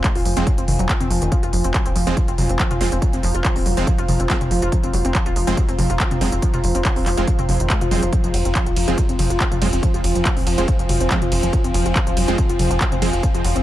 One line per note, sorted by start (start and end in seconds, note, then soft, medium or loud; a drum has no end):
0.00 13.63 F4 medium
0.00 13.63 C5 medium
0.00 13.63 F5 medium
0.00 2.74 G#5 medium
0.04 0.08 G#3 medium
0.04 kick loud
0.04 clap loud
0.04 closed hi-hat medium
0.15 0.23 D#1 medium
0.15 0.21 F4 medium
0.15 open hi-hat medium
0.25 0.34 F1 loud
0.25 0.35 F3 medium
0.25 open hi-hat loud
0.37 0.45 F1 medium
0.37 0.45 F3 medium
0.37 0.45 G#3 medium
0.37 0.42 C4 medium
0.37 0.45 C4 medium
0.37 closed hi-hat medium
0.47 0.51 F#3 medium
0.47 kick loud
0.47 closed hi-hat medium
0.58 0.66 F1 medium
0.58 0.64 C4 medium
0.58 closed hi-hat medium
0.68 0.77 F1 loud
0.68 0.72 D#3 medium
0.68 open hi-hat loud
0.68 mid tom loud
0.79 0.87 F1 medium
0.79 0.83 F#3 loud
0.79 closed hi-hat medium
0.89 0.96 F3 medium
0.89 kick loud
0.89 clap loud
0.89 closed hi-hat medium
1.00 1.08 F1 medium
1.00 1.04 C4 loud
1.00 closed hi-hat medium
1.00 mid tom medium
1.11 1.19 F1 loud
1.11 1.20 F3 loud
1.11 open hi-hat loud
1.22 1.30 F1 medium
1.22 1.28 D#3 medium
1.22 closed hi-hat medium
1.32 1.41 F3 loud
1.32 kick loud
1.32 closed hi-hat medium
1.43 1.51 F1 medium
1.43 1.49 F4 medium
1.43 closed hi-hat medium
1.53 1.62 F1 loud
1.53 1.63 F3 medium
1.53 open hi-hat loud
1.64 1.72 F1 medium
1.64 1.70 C4 medium
1.64 closed hi-hat medium
1.74 1.78 F#3 medium
1.74 kick loud
1.74 clap loud
1.74 closed hi-hat medium
1.86 1.93 D#1 medium
1.86 1.91 C4 medium
1.86 closed hi-hat medium
1.96 2.04 F1 loud
1.96 2.05 F3 loud
1.96 open hi-hat loud
2.07 2.15 F1 medium
2.07 2.15 F3 medium
2.07 2.15 G#3 medium
2.07 2.15 C4 loud
2.07 2.13 F4 medium
2.07 closed hi-hat medium
2.17 2.27 F3 medium
2.17 kick loud
2.17 closed hi-hat medium
2.28 2.36 F1 medium
2.28 2.34 C4 medium
2.28 closed hi-hat medium
2.38 2.47 F1 loud
2.38 2.42 F#3 medium
2.38 open hi-hat loud
2.38 mid tom loud
2.49 2.57 F1 medium
2.49 2.55 C4 medium
2.49 closed hi-hat medium
2.59 2.69 F3 loud
2.59 kick loud
2.59 clap loud
2.59 closed hi-hat medium
2.71 2.79 F1 medium
2.71 2.76 F4 medium
2.71 9.55 A#5 medium
2.71 closed hi-hat medium
2.71 mid tom loud
2.81 2.90 F1 loud
2.81 2.90 F3 medium
2.81 2.87 F3 loud
2.81 2.87 G#3 medium
2.81 2.87 C4 loud
2.81 open hi-hat loud
2.92 3.00 F1 medium
2.92 2.98 C4 medium
2.92 closed hi-hat medium
3.02 3.06 F#3 medium
3.02 kick loud
3.02 closed hi-hat medium
3.13 3.21 F1 medium
3.13 3.19 C4 medium
3.13 closed hi-hat soft
3.23 3.32 F1 loud
3.23 3.33 F3 loud
3.23 open hi-hat loud
3.35 3.42 F1 medium
3.35 3.40 F4 medium
3.35 closed hi-hat medium
3.45 3.54 F3 medium
3.45 kick loud
3.45 clap loud
3.45 closed hi-hat medium
3.56 3.64 D#1 medium
3.56 3.62 C4 medium
3.56 open hi-hat medium
3.66 3.75 F1 loud
3.66 3.70 F#3 medium
3.66 open hi-hat loud
3.77 3.85 F1 medium
3.77 3.86 F3 medium
3.77 3.86 G#3 medium
3.77 3.83 C4 medium
3.77 3.86 C4 medium
3.77 closed hi-hat soft
3.87 3.97 F3 loud
3.87 kick loud
3.87 closed hi-hat medium
3.98 4.06 F1 medium
3.98 4.04 F4 medium
3.98 closed hi-hat medium
4.08 4.17 F1 loud
4.08 4.18 F3 medium
4.08 open hi-hat loud
4.08 mid tom loud
4.20 4.27 F1 medium
4.20 4.25 C4 medium
4.20 closed hi-hat medium
4.30 4.36 F3 medium
4.30 4.34 F#3 medium
4.30 4.36 G#3 medium
4.30 4.36 C4 medium
4.30 kick loud
4.30 clap loud
4.30 closed hi-hat medium
4.41 4.49 F1 medium
4.41 4.47 C4 medium
4.41 closed hi-hat medium
4.41 mid tom loud
4.51 4.60 F1 loud
4.51 4.61 F3 loud
4.51 open hi-hat loud
4.62 4.70 F1 medium
4.62 4.68 F4 medium
4.62 closed hi-hat medium
4.72 4.82 F3 medium
4.72 kick loud
4.72 closed hi-hat medium
4.83 4.91 F1 medium
4.83 4.89 C4 medium
4.83 closed hi-hat medium
4.93 5.02 F1 loud
4.93 4.97 F#3 medium
4.93 open hi-hat loud
5.05 5.13 F1 medium
5.05 5.11 C4 medium
5.05 closed hi-hat medium
5.15 5.24 F3 loud
5.15 kick loud
5.15 clap loud
5.15 closed hi-hat medium
5.26 5.34 D#1 medium
5.26 5.32 F4 medium
5.26 closed hi-hat medium
5.36 5.45 F1 loud
5.36 5.46 F3 medium
5.36 open hi-hat loud
5.47 5.55 F1 medium
5.47 5.56 F3 loud
5.47 5.56 G#3 medium
5.47 5.53 C4 medium
5.47 5.56 C4 loud
5.47 closed hi-hat medium
5.57 5.61 F#3 medium
5.57 kick loud
5.57 closed hi-hat medium
5.69 5.76 F1 medium
5.69 5.74 C4 medium
5.69 closed hi-hat medium
5.79 5.87 F1 loud
5.79 5.88 F3 loud
5.79 open hi-hat loud
5.79 mid tom medium
5.90 5.98 F1 medium
5.90 5.96 F4 medium
5.90 closed hi-hat medium
6.00 6.10 F3 medium
6.00 kick loud
6.00 clap loud
6.00 closed hi-hat medium
6.11 6.19 F1 medium
6.11 6.17 C4 medium
6.11 closed hi-hat medium
6.11 mid tom loud
6.21 6.30 F1 loud
6.21 6.27 F3 loud
6.21 6.25 F#3 medium
6.21 6.27 G#3 medium
6.21 6.27 C4 loud
6.21 open hi-hat loud
6.32 6.40 F1 medium
6.32 6.38 C4 medium
6.32 closed hi-hat medium
6.42 6.52 F3 loud
6.42 kick loud
6.42 closed hi-hat medium
6.54 6.61 F1 medium
6.54 6.59 F4 medium
6.54 closed hi-hat medium
6.54 mid tom medium
6.64 6.72 F1 loud
6.64 6.73 F3 medium
6.64 open hi-hat loud
6.75 6.83 F1 medium
6.75 6.81 C4 medium
6.75 closed hi-hat medium
6.85 6.89 F#3 medium
6.85 kick loud
6.85 clap loud
6.85 closed hi-hat medium
6.96 7.04 D#1 medium
6.96 7.02 C4 medium
6.96 open hi-hat medium
7.06 7.15 F1 loud
7.06 7.16 F3 loud
7.06 clap soft
7.06 open hi-hat loud
7.17 7.25 F1 medium
7.17 7.26 F3 medium
7.17 7.26 G#3 medium
7.17 7.26 C4 medium
7.17 7.23 F4 medium
7.17 closed hi-hat medium
7.27 7.37 F3 medium
7.27 kick loud
7.27 closed hi-hat medium
7.39 7.47 F1 medium
7.39 7.45 C4 medium
7.39 closed hi-hat medium
7.39 mid tom medium
7.49 7.58 F1 loud
7.49 7.58 F3 medium
7.49 open hi-hat loud
7.49 mid tom medium
7.60 7.68 F1 medium
7.60 7.69 D#3 medium
7.60 closed hi-hat medium
7.70 7.80 G#3 loud
7.70 kick loud
7.70 clap loud
7.70 closed hi-hat medium
7.81 7.89 F1 medium
7.81 7.90 F4 medium
7.81 closed hi-hat medium
7.81 mid tom medium
7.91 8.00 F1 loud
7.91 8.01 F3 medium
7.91 8.01 F#3 medium
7.91 8.01 G#3 medium
7.91 8.01 C4 medium
7.91 open hi-hat loud
8.03 8.10 F1 medium
8.03 8.11 F3 loud
8.03 closed hi-hat medium
8.13 8.22 F3 medium
8.13 13.63 F3 medium
8.13 13.63 C4 medium
8.13 kick loud
8.13 closed hi-hat medium
8.24 8.32 F1 medium
8.24 8.27 F3 loud
8.24 closed hi-hat medium
8.34 8.43 F1 loud
8.34 8.38 F#3 medium
8.34 open hi-hat loud
8.34 ride medium
8.45 8.53 F1 medium
8.45 8.51 C4 medium
8.45 closed hi-hat medium
8.55 8.65 F3 loud
8.55 kick loud
8.55 clap loud
8.55 closed hi-hat medium
8.66 8.74 D#1 medium
8.66 8.72 F4 medium
8.66 closed hi-hat medium
8.76 8.85 F1 loud
8.76 8.86 F3 medium
8.76 open hi-hat loud
8.76 ride medium
8.88 8.96 F1 medium
8.88 8.96 F3 medium
8.88 8.91 F3 loud
8.88 8.96 G#3 medium
8.88 8.96 C4 loud
8.88 closed hi-hat medium
8.98 9.02 F#3 medium
8.98 kick loud
8.98 closed hi-hat medium
9.09 9.17 F1 medium
9.09 9.15 C4 medium
9.09 closed hi-hat medium
9.19 9.28 F1 loud
9.19 9.29 F3 loud
9.19 open hi-hat loud
9.19 mid tom medium
9.19 ride medium
9.30 9.38 F1 medium
9.30 9.36 F4 medium
9.30 closed hi-hat medium
9.40 9.50 F3 medium
9.40 kick loud
9.40 clap loud
9.40 closed hi-hat medium
9.52 9.59 F1 medium
9.52 9.55 F3 loud
9.52 13.63 G#5 medium
9.52 closed hi-hat medium
9.52 mid tom medium
9.62 9.70 F1 loud
9.62 9.68 F3 loud
9.62 9.65 F#3 medium
9.62 9.68 G#3 medium
9.62 9.68 C4 loud
9.62 open hi-hat loud
9.62 ride medium
9.73 9.81 F1 medium
9.73 9.79 C4 medium
9.73 closed hi-hat medium
9.83 9.93 F3 loud
9.83 kick loud
9.83 closed hi-hat medium
9.94 10.02 F1 medium
9.94 10.00 F4 medium
9.94 closed hi-hat medium
10.04 10.13 F1 loud
10.04 10.14 F3 medium
10.04 open hi-hat loud
10.04 ride medium
10.15 10.23 F1 medium
10.15 10.19 F3 loud
10.15 closed hi-hat medium
10.25 10.29 F#3 medium
10.25 kick loud
10.25 clap loud
10.25 closed hi-hat medium
10.37 10.45 D#1 medium
10.37 10.42 C4 medium
10.37 open hi-hat medium
10.47 10.55 F1 loud
10.47 10.56 F3 loud
10.47 open hi-hat loud
10.47 ride medium
10.58 10.66 F1 medium
10.58 10.66 F3 medium
10.58 10.66 G#3 medium
10.58 10.66 C4 medium
10.58 10.64 F4 medium
10.58 closed hi-hat medium
10.68 10.78 F3 medium
10.68 kick loud
10.68 closed hi-hat medium
10.79 10.87 F1 medium
10.79 10.83 F3 loud
10.79 closed hi-hat medium
10.89 10.98 F1 loud
10.89 10.93 F#3 medium
10.89 open hi-hat loud
10.89 mid tom medium
10.89 ride medium
11.01 11.08 F1 medium
11.01 11.06 C4 medium
11.01 closed hi-hat medium
11.11 11.20 F3 loud
11.11 11.17 F3 medium
11.11 11.17 G#3 medium
11.11 11.17 C4 medium
11.11 kick loud
11.11 clap loud
11.11 closed hi-hat medium
11.22 11.30 F1 medium
11.22 11.28 F4 medium
11.22 closed hi-hat medium
11.22 mid tom medium
11.32 11.41 F1 loud
11.32 11.42 F3 medium
11.32 open hi-hat loud
11.32 ride medium
11.43 11.51 F1 medium
11.43 11.46 F3 loud
11.43 closed hi-hat medium
11.53 11.57 F#3 medium
11.53 kick loud
11.53 closed hi-hat medium
11.64 11.72 F1 medium
11.64 11.70 C4 medium
11.64 closed hi-hat medium
11.74 11.83 F1 loud
11.74 11.84 F3 loud
11.74 open hi-hat loud
11.74 ride medium
11.86 11.93 F1 medium
11.86 11.91 F4 medium
11.86 closed hi-hat medium
11.96 12.05 F3 medium
11.96 kick loud
11.96 clap loud
11.96 closed hi-hat medium
12.07 12.15 D#1 medium
12.07 12.10 F3 loud
12.07 closed hi-hat medium
12.17 12.26 F1 loud
12.17 12.21 F#3 medium
12.17 open hi-hat loud
12.17 ride medium
12.28 12.37 F3 medium
12.28 12.37 G#3 medium
12.28 12.34 C4 medium
12.28 12.37 C4 loud
12.28 closed hi-hat medium
12.38 12.48 F3 loud
12.38 kick loud
12.38 closed hi-hat medium
12.49 12.57 F1 medium
12.49 12.55 F4 medium
12.49 closed hi-hat medium
12.59 12.68 F1 loud
12.59 12.69 F3 medium
12.59 open hi-hat loud
12.59 mid tom medium
12.59 ride medium
12.71 12.79 F1 medium
12.71 12.74 F3 loud
12.71 closed hi-hat medium
12.81 kick loud
12.81 clap loud
12.81 closed hi-hat medium
12.92 13.00 F1 medium
12.92 12.98 C4 medium
12.92 closed hi-hat medium
12.92 mid tom medium
13.02 13.11 F1 loud
13.02 13.12 F3 loud
13.02 13.08 F3 loud
13.02 13.08 G#3 medium
13.02 13.08 C4 loud
13.02 open hi-hat loud
13.02 ride medium
13.13 13.21 F1 medium
13.13 13.19 F4 medium
13.13 closed hi-hat medium
13.23 13.33 F3 medium
13.23 kick loud
13.23 closed hi-hat medium
13.34 13.42 F1 medium
13.34 13.38 F3 loud
13.34 closed hi-hat medium
13.44 13.53 F1 loud
13.44 13.48 F#3 medium
13.44 open hi-hat loud
13.44 ride medium
13.56 13.63 F1 medium
13.56 13.62 C4 medium
13.56 closed hi-hat medium